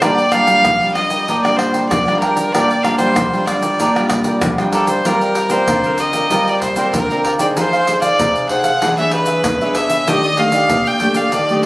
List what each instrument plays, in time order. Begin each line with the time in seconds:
0.02 nylon-string guitar A#2 G3 D4 F4, cavaquinho D4 A#4 D5 G5, violin D5, pandeiro, tamborim, shaker, surdo
0.18 cavaquinho A#4 G5, pandeiro, shaker
0.32 nylon-string guitar G3 D4 F4, cavaquinho D4 A#4 D5 G5, violin F5, pandeiro, tamborim, shaker
0.47 nylon-string guitar G3 D4 F4, cavaquinho A#4 D5 G5, pandeiro, shaker
0.65 nylon-string guitar F3, pandeiro, tamborim, shaker, surdo
0.81 nylon-string guitar G3 D4 F4, cavaquinho A#4 D5 G5, pandeiro, shaker
0.95 nylon-string guitar G3 D4 F4, violin D#5, muted cavaquinho stroke, pandeiro, tamborim
1.10 cavaquinho A#4 D5 G5, pandeiro, shaker
1.28 nylon-string guitar A#2, cavaquinho D4 A#4 D5 G5, pandeiro, shaker, surdo
1.43 nylon-string guitar G3 D4 F4, violin D5, cavaquinho D5 G5, pandeiro, tamborim, shaker
1.47 cavaquinho A#4
1.57 violin C5, muted cavaquinho stroke, pandeiro, tamborim
1.73 cavaquinho A#4 D5 G5, pandeiro, shaker
1.89 nylon-string guitar F3, violin D5, pandeiro, tamborim, shaker, surdo
2.08 nylon-string guitar G3 D4 F4, cavaquinho A#4 D5 G5, pandeiro, tamborim, shaker
2.20 cavaquinho D4 A#4 D5 G5, violin A#4, pandeiro
2.36 cavaquinho A#4 D5 G5, pandeiro, shaker
2.52 nylon-string guitar A#2 G3 D4 F4, cavaquinho D4 A#4 D5 G5, violin D5, pandeiro, tamborim, shaker, surdo
2.70 cavaquinho A#4 D5 G5, pandeiro, shaker
2.83 nylon-string guitar G3 D4 F4, cavaquinho D4 A#4 D5 G5, violin F5, pandeiro, tamborim
2.98 nylon-string guitar G3 D4 F4, cavaquinho A#4 D5 G5, violin C5, pandeiro, shaker
3.16 nylon-string guitar F3, pandeiro, tamborim, shaker, surdo
3.33 nylon-string guitar G3 D4 F4, cavaquinho A#4 D5 G5, pandeiro, shaker
3.46 nylon-string guitar G3 D4 F4, violin D5, muted cavaquinho stroke, pandeiro, tamborim, shaker
3.62 cavaquinho A#4 D5 G5, pandeiro, shaker
3.80 nylon-string guitar A#2, cavaquinho D4 A#4 D5 G5, pandeiro, shaker, surdo
3.96 nylon-string guitar G3 D4 F4, cavaquinho A#4 D5 G5, pandeiro, tamborim, shaker
4.10 muted cavaquinho stroke, pandeiro, tamborim, shaker, surdo
4.24 cavaquinho A#4 D5 G5, pandeiro, shaker
4.41 nylon-string guitar F3, pandeiro, tamborim, shaker, surdo
4.58 nylon-string guitar G3 D4 F4, cavaquinho A#4 D5 G5, pandeiro, tamborim, shaker
4.73 cavaquinho D4 A#4 D5 G5, violin A4, pandeiro, shaker
4.87 cavaquinho A#4 D5 G5, violin C5, pandeiro, shaker
5.05 nylon-string guitar G3 C4 F4 A#4, cavaquinho F4 A#4 D5 G5, violin A#4, pandeiro, shaker, surdo
5.21 cavaquinho A#4 D5 G5, pandeiro, shaker
5.35 muted cavaquinho stroke, pandeiro, shaker
5.50 nylon-string guitar C4 F4 A#4, cavaquinho A#4 D5 G5, violin C5, pandeiro, shaker
5.68 nylon-string guitar D3, cavaquinho F4 A#4 D5 G5, pandeiro, shaker, surdo
5.84 nylon-string guitar C4 F4 A#4, pandeiro, shaker
5.98 violin D#5, pandeiro, shaker
6.13 nylon-string guitar C4 F4 A#4, cavaquinho A#4 D5 G5, pandeiro, shaker
6.30 nylon-string guitar G3 C4 F4 A#4, cavaquinho F4 A#4 D5 G5, pandeiro, shaker, surdo
6.47 cavaquinho A#4 D5 G5, violin D5, pandeiro, shaker
6.62 violin C5, muted cavaquinho stroke, pandeiro, shaker, surdo
6.76 nylon-string guitar C4 F4 A#4, cavaquinho A#4 D5 G5, pandeiro, shaker
6.94 nylon-string guitar D3, violin A#4, pandeiro, shaker, surdo
7.10 nylon-string guitar C4 F4 A#4, cavaquinho A#4 D5 G5, pandeiro, shaker
7.25 cavaquinho F4 A#4 D5 G5, violin A#4, pandeiro
7.39 nylon-string guitar D#4 G#4 C5, cavaquinho A#4 D5 G5, violin D5, pandeiro, shaker
7.57 nylon-string guitar F3, cavaquinho D#4 G#4 C5 F5, violin C5, pandeiro, shaker, surdo
7.73 cavaquinho G#4 C5 F5, pandeiro, shaker
7.87 nylon-string guitar D#4 G#4 C5, muted cavaquinho stroke, pandeiro, shaker
8.01 cavaquinho G#4 C5 F5, violin D5, pandeiro, shaker
8.19 nylon-string guitar C3, cavaquinho D#4 G#4 C5 F5, pandeiro, shaker, surdo
8.36 pandeiro, shaker
8.49 nylon-string guitar D#4 G#4 C5, violin F#5, pandeiro
8.64 cavaquinho G#4 C5 F5, pandeiro, shaker
8.82 nylon-string guitar E3 D4 G#4 C#5, cavaquinho D4 G#4 B4 E5, pandeiro, shaker, surdo
8.98 nylon-string guitar D4 G#4 C#5, cavaquinho G#4 B4 E5, violin E5, pandeiro, shaker
9.11 violin B4, muted cavaquinho stroke, pandeiro
9.26 cavaquinho G#4 B4 E5, pandeiro, shaker
9.44 nylon-string guitar B2, pandeiro, shaker, surdo
9.61 nylon-string guitar D4 G#4 C#5, cavaquinho G#4 B4 E5, pandeiro, shaker
9.75 cavaquinho D4 G#4 B4 E5, violin E5, pandeiro, shaker
9.90 cavaquinho G#4 B4 E5, pandeiro, shaker
10.07 nylon-string guitar D#3 A3 D4 G4, cavaquinho D4 G4 D5 D#5, violin D#5, pandeiro, shaker, surdo
10.24 cavaquinho G4 D5 D#5, pandeiro, shaker
10.37 nylon-string guitar A3 D4 G4, violin F5, muted cavaquinho stroke, pandeiro
10.52 cavaquinho G4 D5 D#5, pandeiro, shaker
10.69 nylon-string guitar A#2, cavaquinho G4 D#5, pandeiro, shaker, surdo
10.74 cavaquinho D5
10.86 violin G5, pandeiro, shaker
11.00 nylon-string guitar A3 D4 G4, pandeiro
11.14 cavaquinho D5 D#5, violin F5, pandeiro, shaker
11.19 cavaquinho G4
11.32 nylon-string guitar D#3, cavaquinho D4 G4 D5 D#5, violin D5, pandeiro, shaker, surdo
11.49 nylon-string guitar A3 D4 G4, cavaquinho G4 D5 D#5, pandeiro, shaker